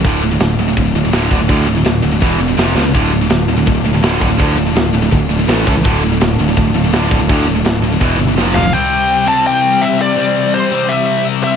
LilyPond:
<<
  \new Staff \with { instrumentName = "Lead electric guitar" } { \time 4/4 \key d \minor \tempo 4 = 166 r1 | r1 | r1 | r1 |
r1 | r2. r8 f''8 | g''4. a''8 g''4 e''8 d''8~ | d''4 c''4 e''4 r8 e''8 | }
  \new Staff \with { instrumentName = "String section" } { \time 4/4 \key d \minor << { r1 | r1 | <d f f' a'>1~ | <d f f' a'>2. <a, e e' e''>4 |
<d f f' a'>1~ | <d f f' a'>2 <b, e e' e''>4 <c' f'>4 | <e g g' c''>1~ | <e g g' c''>1 | } \\ { r1 | r1 | a1~ | a1~ |
a1~ | a2 b4 f4 | c'1~ | c'1 | } >> }
  \new Staff \with { instrumentName = "Distorted electric guitar" } { \clef bass \time 4/4 \key d \minor <d, a, d>8 <d, a,>16 <d, a,>16 <d, a,>8 <d, a,>16 <d, a,>16 <d, a,>8 <d, a,>16 <d, a,>16 <d, a, d>8 <d, a, d>16 <d, a,>16 | <d, a, d>8 <d, a,>16 <d, a,>16 <d, a,>8 <d, a,>16 <d, a,>16 <e, b, e>8 <e, b,>16 <e, b,>16 <f, c f>8 <f, c f>16 <f, c>16 | <d, a, d>8 <d, a,>16 <d, a,>16 <d, a,>8 <d, a,>16 <d, a,>16 <d, a,>8 <d, a,>16 <d, a,>16 <d, a, d>8 <d, a, d>16 <d, a,>16 | <d, a, d>8 <d, a,>16 <d, a,>16 <d, a,>8 <d, a,>16 <d, a,>16 <d, a,>8 <d, a,>16 <d, a,>16 <a, e a>8 <a, e a>16 <a, e>16 |
<d, a, d>8 <d, a,>16 <d, a,>16 <d, a,>8 <d, a,>16 <d, a,>16 <d, a,>8 <d, a,>16 <d, a,>16 <d, a, d>8 <d, a, d>16 <d, a,>16 | <d, a, d>8 <d, a,>16 <d, a,>16 <d, a,>8 <d, a,>16 <d, a,>16 <e, b, e>8 <e, b,>16 <e, b,>16 <f, c f>8 <f, c f>16 <f, c>16 | <c g c'>4. <c g c'>2~ <c g c'>8 | <c g c'>4. <c g c'>2~ <c g c'>8 | }
  \new Staff \with { instrumentName = "Distorted electric guitar" } { \clef bass \time 4/4 \key d \minor <d, a, d>8 <d, a,>16 <d, a,>16 <d, a,>8 <d, a,>16 <d, a,>16 <d, a,>8 <d, a,>16 <d, a,>16 <d, a, d>8 <d, a, d>16 <d, a,>16 | <d, a, d>8 <d, a,>16 <d, a,>16 <d, a,>8 <d, a,>16 <d, a,>16 <e, b, e>8 <e, b,>16 <e, b,>16 <f, c f>8 <f, c f>16 <f, c>16 | <d, a, d>8 <d, a,>16 <d, a,>16 <d, a,>8 <d, a,>16 <d, a,>16 <d, a,>8 <d, a,>16 <d, a,>16 <d, a, d>8 <d, a, d>16 <d, a,>16 | <d, a, d>8 <d, a,>16 <d, a,>16 <d, a,>8 <d, a,>16 <d, a,>16 <d, a,>8 <d, a,>16 <d, a,>16 <a, e a>8 <a, e a>16 <a, e>16 |
<d, a, d>8 <d, a,>16 <d, a,>16 <d, a,>8 <d, a,>16 <d, a,>16 <d, a,>8 <d, a,>16 <d, a,>16 <d, a, d>8 <d, a, d>16 <d, a,>16 | <d, a, d>8 <d, a,>16 <d, a,>16 <d, a,>8 <d, a,>16 <d, a,>16 <e, b, e>8 <e, b,>16 <e, b,>16 <f, c f>8 <f, c f>16 <f, c>16 | r1 | r1 | }
  \new Staff \with { instrumentName = "Picked electric bass" } { \clef bass \time 4/4 \key d \minor d,,4 d,,8 d,,8 d,,8 d,,8 d,,8 d,,8 | d,8 d,,8 d,,8 d,,8 e,,8 e,,8 f,,8 cis,8 | d,,4 d,,8 d,,8 d,,8 d,,8 d,,8 d,,8 | d,8 d,,8 d,,8 d,,8 d,,8 d,,8 a,,8 cis,8 |
d,,4 d,,8 d,,8 d,,8 d,,8 d,,8 d,,8 | d,8 d,,8 d,,8 d,,8 e,,8 g,,8 f,,8 f,,8 | r1 | r1 | }
  \new DrumStaff \with { instrumentName = "Drums" } \drummode { \time 4/4 <cymc bd>8 cymc8 <cymc sn>8 cymc8 <cymc bd>8 cymc8 <cymc sn>8 <cymc bd>8 | <cymc bd>8 cymc8 <cymc sn>8 cymc8 <cymc bd>8 cymc8 <cymc sn>8 sn8 | <cymc bd>8 cymc8 <cymc sn>8 cymc8 <cymc bd>8 cymc8 <cymc sn>8 <cymc bd>8 | <cymc bd>8 cymc8 <cymc sn>8 cymc8 <cymc bd>8 cymc8 <cymc sn>8 <cymc bd>8 |
<cymc bd>8 cymc8 <cymc sn>8 cymc8 <cymc bd>8 cymc8 <cymc sn>8 <cymc bd>8 | <cymc bd>8 cymc8 <cymc sn>8 cymc8 <cymc bd>8 cymc8 sn8 tomfh8 | r4 r4 r4 r4 | r4 r4 r4 r4 | }
>>